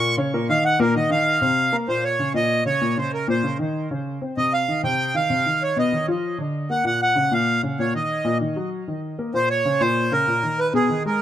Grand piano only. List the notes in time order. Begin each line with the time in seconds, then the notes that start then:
Already playing: A#2 A#3 A#4
0.17 C#3 C#4 C#5
0.33 A#2 A#3 A#4
0.49 D#3 D#4 D#5
0.79 A#2 A#3 A#4
0.95 D#3 D#4 D#5
1.10 D#3 D#4 D#5
1.41 C3 C4 C5
1.72 A#3 A#4 A#5
1.88 A#2 A#3
2.19 C#3 C#4
2.34 A#2 A#3
2.65 C#3 C#4
2.81 A#2 A#3
2.97 C#3 C#4
3.28 A#2 A#3
3.43 C#3 C#4
3.59 D#3 D#4
3.91 C#3 C#4
4.21 C4 C5
4.37 C3 C4
4.68 D#3 D#4
4.83 C3 C4
5.14 D#3 D#4
5.30 C3 C4
5.46 D#3
5.76 B2 B3
5.92 D#3 D#4
6.08 F3 F4
6.38 D3 D4
6.70 A#3 A#4
6.84 A#2 A#3
7.15 C#3 C#4
7.31 A#2 A#3
7.63 C#3 C#4
7.79 A#2 A#3
7.94 D#3 D#4
8.24 A#2 A#3
8.40 D#3 D#4
8.56 F#3 F#4
8.88 D#3 D#4
9.19 A#3 A#4
9.34 A#2 A#3
9.65 C#3 C#4
9.81 A#2 A#3
10.12 C#3 C#4
10.27 A#2 A#3
10.43 D#3 D#4
10.73 B2 B3
10.89 D#3 D#4
11.05 G#3 G#4